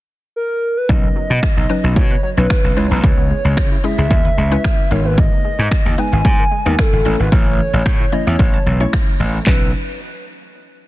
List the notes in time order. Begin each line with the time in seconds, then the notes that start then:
0.36 A#4
0.77 B4
0.89 B1 F#3 C#4 D#4 B4 D#5, kick
1.03 B3
1.16 F#3
1.30 B2
1.43 finger snap, kick
1.57 B1 D#4
1.69 F#3 C#4 D#4 B4
1.84 B1 F#4
1.96 B2 F#3 C#5, kick
2.11 B4
2.23 F#3 C#5
2.37 B1 F#3 C#4 D#4 B4 C#5
2.50 F#3, finger snap, kick
2.64 B1
2.77 C#2 G#3 C#4 E4 B4 C#5
2.91 B1 B3 B4
3.03 C#2 G#3 C#5, kick
3.18 B3
3.30 G#3
3.45 C#2
3.57 C#3, finger snap, kick
3.71 E4
3.84 G#3 C#4 E4 G#4 E5
3.98 C#2 G#4
4.11 D#2 G#3, kick
4.25 B4
4.37 C#2 G#3
4.51 G#3 C#4 E4 B4 C#5
4.64 G#3, finger snap, kick
4.91 G#1 G#3 B3 D#4 A#4 C#5
5.05 A#3 B4
5.18 G#3 D#5, kick
5.32 A#3
5.45 G#3
5.59 G#2
5.71 finger snap, kick
5.85 D#2 D#4
5.98 G#3 B3 D#4 B4 G#5
6.12 G#1 G#4
6.25 G#2 G#3, kick
6.39 A#4
6.51 G#3
6.66 D#2 G#3 B3 D#4 A#4 B4
6.78 G#3 A4, finger snap, kick
6.93 G#1
7.05 A1 E3 A3 C#4 E4 C#5
7.19 G#1 A3 B4
7.32 A1 E3 C#5, kick
7.46 A3
7.59 E3
7.73 A1
7.86 finger snap, kick
8.00 E4
8.12 E3 A3 C#4 E4 C#5 D#5
8.27 E2 C#5 E5
8.39 A1 E3, kick
8.54 A5
8.66 B1 E3
8.80 A3 C#4 E4 C#5 C#6
8.93 E3, finger snap, kick
9.20 A1 E3
9.34 A3
9.46 B1 F#3 B3 C#4 D#4 B4, kick, clap